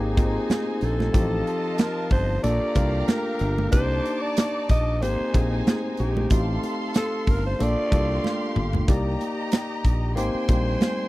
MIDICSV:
0, 0, Header, 1, 7, 480
1, 0, Start_track
1, 0, Tempo, 644468
1, 854, Time_signature, 4, 2, 24, 8
1, 8255, End_track
2, 0, Start_track
2, 0, Title_t, "Violin section"
2, 0, Program_c, 0, 48
2, 0, Note_on_c, 0, 63, 95
2, 0, Note_on_c, 0, 72, 87
2, 0, Note_on_c, 0, 80, 89
2, 836, Note_off_c, 0, 80, 0
2, 839, Note_off_c, 0, 63, 0
2, 839, Note_off_c, 0, 72, 0
2, 853, Note_on_c, 0, 81, 104
2, 855, Note_on_c, 0, 65, 93
2, 857, Note_on_c, 0, 75, 91
2, 1795, Note_off_c, 0, 81, 0
2, 1796, Note_off_c, 0, 65, 0
2, 1797, Note_off_c, 0, 75, 0
2, 1820, Note_on_c, 0, 82, 99
2, 1821, Note_on_c, 0, 67, 91
2, 1823, Note_on_c, 0, 77, 94
2, 2760, Note_off_c, 0, 67, 0
2, 2760, Note_off_c, 0, 82, 0
2, 2761, Note_off_c, 0, 77, 0
2, 2776, Note_on_c, 0, 86, 100
2, 2781, Note_on_c, 0, 81, 109
2, 2783, Note_on_c, 0, 63, 99
2, 3718, Note_off_c, 0, 86, 0
2, 3721, Note_off_c, 0, 81, 0
2, 3722, Note_off_c, 0, 63, 0
2, 3736, Note_on_c, 0, 72, 97
2, 3736, Note_on_c, 0, 80, 102
2, 3740, Note_on_c, 0, 63, 89
2, 4678, Note_off_c, 0, 72, 0
2, 4678, Note_off_c, 0, 80, 0
2, 4680, Note_off_c, 0, 63, 0
2, 4699, Note_on_c, 0, 84, 102
2, 4703, Note_on_c, 0, 69, 96
2, 4703, Note_on_c, 0, 77, 87
2, 5640, Note_off_c, 0, 84, 0
2, 5641, Note_off_c, 0, 69, 0
2, 5641, Note_off_c, 0, 77, 0
2, 5661, Note_on_c, 0, 84, 99
2, 5663, Note_on_c, 0, 67, 84
2, 5666, Note_on_c, 0, 77, 90
2, 6600, Note_off_c, 0, 84, 0
2, 6601, Note_off_c, 0, 67, 0
2, 6602, Note_off_c, 0, 77, 0
2, 6629, Note_on_c, 0, 82, 113
2, 6630, Note_on_c, 0, 67, 91
2, 6630, Note_on_c, 0, 75, 86
2, 7563, Note_off_c, 0, 67, 0
2, 7563, Note_off_c, 0, 75, 0
2, 7563, Note_off_c, 0, 82, 0
2, 7563, Note_on_c, 0, 79, 91
2, 7564, Note_on_c, 0, 84, 106
2, 7568, Note_on_c, 0, 80, 81
2, 8255, Note_off_c, 0, 79, 0
2, 8255, Note_off_c, 0, 80, 0
2, 8255, Note_off_c, 0, 84, 0
2, 8255, End_track
3, 0, Start_track
3, 0, Title_t, "Alto saxophone"
3, 0, Program_c, 1, 65
3, 0, Note_on_c, 1, 68, 96
3, 630, Note_on_c, 1, 69, 95
3, 641, Note_off_c, 1, 68, 0
3, 1340, Note_on_c, 1, 70, 100
3, 1351, Note_off_c, 1, 69, 0
3, 1575, Note_off_c, 1, 70, 0
3, 1579, Note_on_c, 1, 72, 101
3, 1801, Note_off_c, 1, 72, 0
3, 1813, Note_on_c, 1, 74, 101
3, 2265, Note_off_c, 1, 74, 0
3, 2290, Note_on_c, 1, 70, 93
3, 2744, Note_off_c, 1, 70, 0
3, 2771, Note_on_c, 1, 72, 108
3, 3141, Note_on_c, 1, 74, 113
3, 3152, Note_off_c, 1, 72, 0
3, 3494, Note_off_c, 1, 74, 0
3, 3507, Note_on_c, 1, 75, 114
3, 3742, Note_on_c, 1, 72, 115
3, 3753, Note_off_c, 1, 75, 0
3, 4022, Note_off_c, 1, 72, 0
3, 4224, Note_on_c, 1, 68, 97
3, 4330, Note_off_c, 1, 68, 0
3, 4465, Note_on_c, 1, 67, 96
3, 4912, Note_off_c, 1, 67, 0
3, 5191, Note_on_c, 1, 69, 100
3, 5444, Note_on_c, 1, 70, 97
3, 5455, Note_off_c, 1, 69, 0
3, 5555, Note_off_c, 1, 70, 0
3, 5559, Note_on_c, 1, 72, 94
3, 5681, Note_on_c, 1, 74, 117
3, 5692, Note_off_c, 1, 72, 0
3, 6389, Note_off_c, 1, 74, 0
3, 7589, Note_on_c, 1, 72, 99
3, 8255, Note_off_c, 1, 72, 0
3, 8255, End_track
4, 0, Start_track
4, 0, Title_t, "Tine electric piano"
4, 0, Program_c, 2, 4
4, 0, Note_on_c, 2, 58, 93
4, 0, Note_on_c, 2, 60, 83
4, 0, Note_on_c, 2, 63, 77
4, 0, Note_on_c, 2, 67, 92
4, 37, Control_c, 2, 64, 127
4, 112, Note_off_c, 2, 58, 0
4, 114, Note_off_c, 2, 60, 0
4, 115, Note_off_c, 2, 63, 0
4, 118, Note_off_c, 2, 67, 0
4, 122, Note_on_c, 2, 58, 79
4, 123, Note_on_c, 2, 60, 76
4, 129, Note_on_c, 2, 63, 78
4, 134, Note_on_c, 2, 65, 82
4, 797, Note_off_c, 2, 58, 0
4, 797, Note_off_c, 2, 60, 0
4, 800, Note_off_c, 2, 63, 0
4, 803, Note_off_c, 2, 65, 0
4, 837, Note_on_c, 2, 55, 61
4, 842, Note_on_c, 2, 60, 77
4, 847, Note_on_c, 2, 63, 71
4, 850, Note_on_c, 2, 67, 85
4, 864, Control_c, 2, 64, 0
4, 886, Note_on_c, 2, 53, 78
4, 897, Note_off_c, 2, 55, 0
4, 980, Control_c, 2, 64, 127
4, 1740, Note_off_c, 2, 60, 0
4, 1743, Note_off_c, 2, 63, 0
4, 1745, Note_off_c, 2, 67, 0
4, 1762, Note_off_c, 2, 53, 0
4, 1805, Note_on_c, 2, 58, 82
4, 1807, Note_on_c, 2, 62, 76
4, 1811, Note_on_c, 2, 65, 80
4, 1815, Note_on_c, 2, 69, 98
4, 1824, Control_c, 2, 64, 0
4, 1940, Control_c, 2, 64, 127
4, 2033, Note_off_c, 2, 58, 0
4, 2034, Note_off_c, 2, 62, 0
4, 2036, Note_off_c, 2, 65, 0
4, 2038, Note_off_c, 2, 69, 0
4, 2044, Note_on_c, 2, 58, 70
4, 2049, Note_on_c, 2, 62, 71
4, 2053, Note_on_c, 2, 65, 73
4, 2058, Note_on_c, 2, 70, 91
4, 2719, Note_off_c, 2, 58, 0
4, 2722, Note_off_c, 2, 62, 0
4, 2724, Note_off_c, 2, 65, 0
4, 2726, Note_off_c, 2, 70, 0
4, 2762, Note_on_c, 2, 58, 76
4, 2766, Note_on_c, 2, 62, 79
4, 2771, Note_on_c, 2, 63, 74
4, 2773, Note_on_c, 2, 67, 93
4, 2785, Control_c, 2, 64, 0
4, 2928, Control_c, 2, 64, 127
4, 3662, Note_off_c, 2, 58, 0
4, 3663, Note_off_c, 2, 62, 0
4, 3666, Note_off_c, 2, 63, 0
4, 3667, Note_off_c, 2, 67, 0
4, 3730, Note_on_c, 2, 58, 87
4, 3737, Note_on_c, 2, 60, 83
4, 3741, Note_on_c, 2, 63, 72
4, 3747, Control_c, 2, 64, 0
4, 3747, Note_on_c, 2, 67, 87
4, 3898, Control_c, 2, 64, 127
4, 3957, Note_off_c, 2, 58, 0
4, 3960, Note_off_c, 2, 60, 0
4, 3962, Note_off_c, 2, 63, 0
4, 3965, Note_off_c, 2, 67, 0
4, 3973, Note_on_c, 2, 58, 73
4, 3977, Note_on_c, 2, 60, 80
4, 3986, Note_on_c, 2, 63, 73
4, 3986, Note_on_c, 2, 68, 83
4, 4644, Note_off_c, 2, 58, 0
4, 4647, Note_off_c, 2, 60, 0
4, 4651, Note_off_c, 2, 63, 0
4, 4651, Note_off_c, 2, 68, 0
4, 4697, Note_on_c, 2, 57, 84
4, 4700, Note_on_c, 2, 60, 74
4, 4704, Note_on_c, 2, 63, 74
4, 4709, Control_c, 2, 64, 0
4, 4712, Note_on_c, 2, 66, 69
4, 4757, Note_off_c, 2, 66, 0
4, 4761, Note_on_c, 2, 67, 89
4, 4835, Control_c, 2, 64, 127
4, 5589, Note_off_c, 2, 57, 0
4, 5591, Note_off_c, 2, 60, 0
4, 5593, Note_off_c, 2, 63, 0
4, 5621, Note_off_c, 2, 67, 0
4, 5654, Note_on_c, 2, 58, 83
4, 5657, Note_on_c, 2, 62, 77
4, 5660, Note_on_c, 2, 65, 73
4, 5663, Note_on_c, 2, 69, 96
4, 5668, Control_c, 2, 64, 0
4, 5807, Control_c, 2, 64, 127
4, 5876, Note_off_c, 2, 58, 0
4, 5880, Note_off_c, 2, 62, 0
4, 5882, Note_off_c, 2, 65, 0
4, 5883, Note_off_c, 2, 69, 0
4, 5885, Note_on_c, 2, 58, 79
4, 5889, Note_on_c, 2, 62, 75
4, 5894, Note_on_c, 2, 65, 68
4, 5898, Note_on_c, 2, 69, 84
4, 6560, Note_off_c, 2, 58, 0
4, 6561, Note_off_c, 2, 62, 0
4, 6564, Note_off_c, 2, 65, 0
4, 6566, Note_off_c, 2, 69, 0
4, 6612, Note_on_c, 2, 58, 97
4, 6617, Note_on_c, 2, 74, 87
4, 6618, Note_on_c, 2, 63, 83
4, 6622, Note_on_c, 2, 67, 103
4, 6628, Control_c, 2, 64, 0
4, 6745, Control_c, 2, 64, 127
4, 7505, Note_off_c, 2, 58, 0
4, 7508, Note_off_c, 2, 63, 0
4, 7508, Note_off_c, 2, 74, 0
4, 7510, Note_off_c, 2, 67, 0
4, 7564, Note_on_c, 2, 58, 92
4, 7570, Note_on_c, 2, 60, 87
4, 7576, Note_on_c, 2, 63, 79
4, 7581, Note_on_c, 2, 67, 97
4, 7586, Control_c, 2, 64, 0
4, 7706, Control_c, 2, 64, 127
4, 7793, Note_off_c, 2, 58, 0
4, 7796, Note_off_c, 2, 60, 0
4, 7799, Note_off_c, 2, 63, 0
4, 7801, Note_off_c, 2, 67, 0
4, 7807, Note_on_c, 2, 58, 75
4, 7807, Note_on_c, 2, 60, 70
4, 7813, Note_on_c, 2, 63, 69
4, 7815, Note_on_c, 2, 55, 80
4, 8255, Note_off_c, 2, 55, 0
4, 8255, Note_off_c, 2, 58, 0
4, 8255, Note_off_c, 2, 60, 0
4, 8255, Note_off_c, 2, 63, 0
4, 8255, End_track
5, 0, Start_track
5, 0, Title_t, "Fingered electric bass"
5, 0, Program_c, 3, 33
5, 0, Note_on_c, 3, 32, 103
5, 273, Note_off_c, 3, 32, 0
5, 613, Note_on_c, 3, 34, 80
5, 806, Note_off_c, 3, 34, 0
5, 854, Note_on_c, 3, 33, 106
5, 1047, Note_off_c, 3, 33, 0
5, 1570, Note_on_c, 3, 31, 103
5, 1765, Note_off_c, 3, 31, 0
5, 1817, Note_on_c, 3, 34, 95
5, 1921, Note_off_c, 3, 34, 0
5, 2053, Note_on_c, 3, 36, 108
5, 2247, Note_off_c, 3, 36, 0
5, 2539, Note_on_c, 3, 31, 101
5, 2731, Note_off_c, 3, 31, 0
5, 2780, Note_on_c, 3, 36, 101
5, 2972, Note_off_c, 3, 36, 0
5, 3500, Note_on_c, 3, 34, 86
5, 3743, Note_off_c, 3, 34, 0
5, 3743, Note_on_c, 3, 32, 97
5, 3845, Note_off_c, 3, 32, 0
5, 3981, Note_on_c, 3, 34, 112
5, 4173, Note_off_c, 3, 34, 0
5, 4467, Note_on_c, 3, 34, 95
5, 4657, Note_off_c, 3, 34, 0
5, 4700, Note_on_c, 3, 33, 108
5, 4892, Note_off_c, 3, 33, 0
5, 5417, Note_on_c, 3, 31, 94
5, 5610, Note_off_c, 3, 31, 0
5, 5664, Note_on_c, 3, 34, 88
5, 5766, Note_off_c, 3, 34, 0
5, 5900, Note_on_c, 3, 36, 101
5, 6092, Note_off_c, 3, 36, 0
5, 6382, Note_on_c, 3, 31, 90
5, 6573, Note_off_c, 3, 31, 0
5, 6620, Note_on_c, 3, 36, 100
5, 6812, Note_off_c, 3, 36, 0
5, 7335, Note_on_c, 3, 34, 73
5, 7573, Note_off_c, 3, 34, 0
5, 7573, Note_on_c, 3, 32, 102
5, 7678, Note_off_c, 3, 32, 0
5, 7813, Note_on_c, 3, 34, 103
5, 8007, Note_off_c, 3, 34, 0
5, 8255, End_track
6, 0, Start_track
6, 0, Title_t, "Muted fingered electric bass strokes"
6, 1948, Note_on_c, 9, 29, 47
6, 2023, Note_off_c, 9, 29, 0
6, 3876, Note_on_c, 9, 29, 41
6, 3951, Note_off_c, 9, 29, 0
6, 7705, Note_on_c, 9, 29, 45
6, 7780, Note_off_c, 9, 29, 0
6, 8255, End_track
7, 0, Start_track
7, 0, Title_t, "Drums"
7, 130, Note_on_c, 9, 36, 98
7, 130, Note_on_c, 9, 42, 72
7, 137, Note_on_c, 9, 62, 49
7, 204, Note_off_c, 9, 36, 0
7, 205, Note_off_c, 9, 42, 0
7, 212, Note_off_c, 9, 62, 0
7, 372, Note_on_c, 9, 63, 74
7, 374, Note_on_c, 9, 42, 85
7, 379, Note_on_c, 9, 38, 114
7, 446, Note_off_c, 9, 63, 0
7, 448, Note_off_c, 9, 42, 0
7, 453, Note_off_c, 9, 38, 0
7, 604, Note_on_c, 9, 42, 75
7, 678, Note_off_c, 9, 42, 0
7, 746, Note_on_c, 9, 63, 71
7, 749, Note_on_c, 9, 38, 36
7, 820, Note_off_c, 9, 63, 0
7, 823, Note_off_c, 9, 38, 0
7, 851, Note_on_c, 9, 36, 109
7, 852, Note_on_c, 9, 42, 84
7, 857, Note_on_c, 9, 62, 59
7, 925, Note_off_c, 9, 36, 0
7, 926, Note_off_c, 9, 42, 0
7, 932, Note_off_c, 9, 62, 0
7, 1096, Note_on_c, 9, 42, 68
7, 1171, Note_off_c, 9, 42, 0
7, 1326, Note_on_c, 9, 42, 97
7, 1335, Note_on_c, 9, 63, 71
7, 1338, Note_on_c, 9, 38, 111
7, 1401, Note_off_c, 9, 42, 0
7, 1410, Note_off_c, 9, 63, 0
7, 1412, Note_off_c, 9, 38, 0
7, 1565, Note_on_c, 9, 46, 59
7, 1570, Note_on_c, 9, 36, 102
7, 1640, Note_off_c, 9, 46, 0
7, 1645, Note_off_c, 9, 36, 0
7, 1815, Note_on_c, 9, 42, 111
7, 1816, Note_on_c, 9, 62, 50
7, 1890, Note_off_c, 9, 42, 0
7, 1891, Note_off_c, 9, 62, 0
7, 2049, Note_on_c, 9, 42, 76
7, 2053, Note_on_c, 9, 36, 94
7, 2058, Note_on_c, 9, 62, 52
7, 2124, Note_off_c, 9, 42, 0
7, 2127, Note_off_c, 9, 36, 0
7, 2133, Note_off_c, 9, 62, 0
7, 2294, Note_on_c, 9, 42, 81
7, 2296, Note_on_c, 9, 63, 82
7, 2299, Note_on_c, 9, 38, 103
7, 2368, Note_off_c, 9, 42, 0
7, 2370, Note_off_c, 9, 63, 0
7, 2374, Note_off_c, 9, 38, 0
7, 2527, Note_on_c, 9, 42, 83
7, 2601, Note_off_c, 9, 42, 0
7, 2669, Note_on_c, 9, 63, 80
7, 2744, Note_off_c, 9, 63, 0
7, 2770, Note_on_c, 9, 42, 89
7, 2775, Note_on_c, 9, 36, 114
7, 2777, Note_on_c, 9, 62, 58
7, 2845, Note_off_c, 9, 42, 0
7, 2850, Note_off_c, 9, 36, 0
7, 2852, Note_off_c, 9, 62, 0
7, 3020, Note_on_c, 9, 42, 64
7, 3095, Note_off_c, 9, 42, 0
7, 3252, Note_on_c, 9, 42, 113
7, 3261, Note_on_c, 9, 63, 77
7, 3264, Note_on_c, 9, 38, 98
7, 3327, Note_off_c, 9, 42, 0
7, 3336, Note_off_c, 9, 63, 0
7, 3339, Note_off_c, 9, 38, 0
7, 3494, Note_on_c, 9, 42, 83
7, 3497, Note_on_c, 9, 36, 97
7, 3569, Note_off_c, 9, 42, 0
7, 3571, Note_off_c, 9, 36, 0
7, 3742, Note_on_c, 9, 62, 49
7, 3744, Note_on_c, 9, 42, 93
7, 3817, Note_off_c, 9, 62, 0
7, 3819, Note_off_c, 9, 42, 0
7, 3980, Note_on_c, 9, 36, 101
7, 3980, Note_on_c, 9, 42, 72
7, 3985, Note_on_c, 9, 62, 47
7, 4054, Note_off_c, 9, 36, 0
7, 4054, Note_off_c, 9, 42, 0
7, 4060, Note_off_c, 9, 62, 0
7, 4223, Note_on_c, 9, 42, 89
7, 4225, Note_on_c, 9, 63, 78
7, 4228, Note_on_c, 9, 38, 114
7, 4297, Note_off_c, 9, 42, 0
7, 4300, Note_off_c, 9, 63, 0
7, 4303, Note_off_c, 9, 38, 0
7, 4449, Note_on_c, 9, 42, 77
7, 4523, Note_off_c, 9, 42, 0
7, 4593, Note_on_c, 9, 63, 80
7, 4667, Note_off_c, 9, 63, 0
7, 4693, Note_on_c, 9, 42, 103
7, 4698, Note_on_c, 9, 36, 104
7, 4707, Note_on_c, 9, 62, 64
7, 4768, Note_off_c, 9, 42, 0
7, 4772, Note_off_c, 9, 36, 0
7, 4781, Note_off_c, 9, 62, 0
7, 4941, Note_on_c, 9, 42, 66
7, 4942, Note_on_c, 9, 62, 33
7, 5016, Note_off_c, 9, 42, 0
7, 5016, Note_off_c, 9, 62, 0
7, 5170, Note_on_c, 9, 42, 100
7, 5182, Note_on_c, 9, 38, 106
7, 5184, Note_on_c, 9, 63, 75
7, 5245, Note_off_c, 9, 42, 0
7, 5257, Note_off_c, 9, 38, 0
7, 5258, Note_off_c, 9, 63, 0
7, 5414, Note_on_c, 9, 46, 62
7, 5417, Note_on_c, 9, 36, 102
7, 5488, Note_off_c, 9, 46, 0
7, 5492, Note_off_c, 9, 36, 0
7, 5663, Note_on_c, 9, 62, 46
7, 5664, Note_on_c, 9, 42, 106
7, 5738, Note_off_c, 9, 62, 0
7, 5739, Note_off_c, 9, 42, 0
7, 5899, Note_on_c, 9, 36, 100
7, 5901, Note_on_c, 9, 42, 70
7, 5906, Note_on_c, 9, 62, 51
7, 5973, Note_off_c, 9, 36, 0
7, 5975, Note_off_c, 9, 42, 0
7, 5981, Note_off_c, 9, 62, 0
7, 6139, Note_on_c, 9, 63, 69
7, 6149, Note_on_c, 9, 38, 59
7, 6214, Note_off_c, 9, 63, 0
7, 6224, Note_off_c, 9, 38, 0
7, 6376, Note_on_c, 9, 45, 94
7, 6450, Note_off_c, 9, 45, 0
7, 6504, Note_on_c, 9, 43, 96
7, 6514, Note_on_c, 9, 63, 67
7, 6579, Note_off_c, 9, 43, 0
7, 6588, Note_off_c, 9, 63, 0
7, 6615, Note_on_c, 9, 42, 89
7, 6616, Note_on_c, 9, 36, 110
7, 6626, Note_on_c, 9, 62, 61
7, 6689, Note_off_c, 9, 42, 0
7, 6690, Note_off_c, 9, 36, 0
7, 6701, Note_off_c, 9, 62, 0
7, 6858, Note_on_c, 9, 42, 78
7, 6862, Note_on_c, 9, 62, 30
7, 6933, Note_off_c, 9, 42, 0
7, 6936, Note_off_c, 9, 62, 0
7, 7088, Note_on_c, 9, 42, 110
7, 7098, Note_on_c, 9, 63, 78
7, 7100, Note_on_c, 9, 38, 105
7, 7163, Note_off_c, 9, 42, 0
7, 7172, Note_off_c, 9, 63, 0
7, 7174, Note_off_c, 9, 38, 0
7, 7333, Note_on_c, 9, 36, 93
7, 7333, Note_on_c, 9, 42, 83
7, 7407, Note_off_c, 9, 36, 0
7, 7407, Note_off_c, 9, 42, 0
7, 7576, Note_on_c, 9, 62, 48
7, 7578, Note_on_c, 9, 42, 98
7, 7650, Note_off_c, 9, 62, 0
7, 7653, Note_off_c, 9, 42, 0
7, 7809, Note_on_c, 9, 42, 71
7, 7811, Note_on_c, 9, 36, 97
7, 7818, Note_on_c, 9, 62, 47
7, 7883, Note_off_c, 9, 42, 0
7, 7886, Note_off_c, 9, 36, 0
7, 7892, Note_off_c, 9, 62, 0
7, 8051, Note_on_c, 9, 63, 72
7, 8052, Note_on_c, 9, 42, 69
7, 8058, Note_on_c, 9, 38, 115
7, 8125, Note_off_c, 9, 63, 0
7, 8127, Note_off_c, 9, 42, 0
7, 8132, Note_off_c, 9, 38, 0
7, 8255, End_track
0, 0, End_of_file